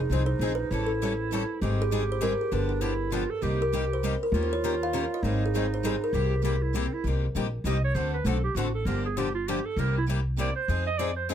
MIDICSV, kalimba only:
0, 0, Header, 1, 2, 480
1, 0, Start_track
1, 0, Tempo, 302419
1, 1121, Time_signature, 3, 2, 24, 8
1, 18000, End_track
2, 0, Start_track
2, 0, Title_t, "Kalimba"
2, 0, Program_c, 0, 108
2, 0, Note_on_c, 0, 68, 90
2, 416, Note_on_c, 0, 72, 83
2, 419, Note_off_c, 0, 68, 0
2, 873, Note_off_c, 0, 72, 0
2, 874, Note_on_c, 0, 71, 87
2, 1341, Note_off_c, 0, 71, 0
2, 1374, Note_on_c, 0, 69, 79
2, 2282, Note_off_c, 0, 69, 0
2, 2884, Note_on_c, 0, 68, 94
2, 3308, Note_off_c, 0, 68, 0
2, 3362, Note_on_c, 0, 72, 79
2, 3539, Note_on_c, 0, 70, 94
2, 3546, Note_off_c, 0, 72, 0
2, 3814, Note_off_c, 0, 70, 0
2, 3829, Note_on_c, 0, 68, 72
2, 4019, Note_off_c, 0, 68, 0
2, 4021, Note_on_c, 0, 71, 75
2, 4140, Note_off_c, 0, 71, 0
2, 4270, Note_on_c, 0, 67, 76
2, 5168, Note_off_c, 0, 67, 0
2, 5744, Note_on_c, 0, 70, 84
2, 6222, Note_off_c, 0, 70, 0
2, 6244, Note_on_c, 0, 72, 81
2, 6666, Note_off_c, 0, 72, 0
2, 6714, Note_on_c, 0, 70, 78
2, 6881, Note_off_c, 0, 70, 0
2, 7027, Note_on_c, 0, 72, 67
2, 7153, Note_off_c, 0, 72, 0
2, 7187, Note_on_c, 0, 73, 93
2, 7662, Note_off_c, 0, 73, 0
2, 7669, Note_on_c, 0, 77, 85
2, 8143, Note_off_c, 0, 77, 0
2, 8159, Note_on_c, 0, 75, 84
2, 8323, Note_off_c, 0, 75, 0
2, 8659, Note_on_c, 0, 68, 86
2, 9106, Note_on_c, 0, 72, 76
2, 9117, Note_off_c, 0, 68, 0
2, 9276, Note_off_c, 0, 72, 0
2, 9299, Note_on_c, 0, 68, 88
2, 9571, Note_off_c, 0, 68, 0
2, 9583, Note_on_c, 0, 70, 80
2, 10663, Note_off_c, 0, 70, 0
2, 18000, End_track
0, 0, End_of_file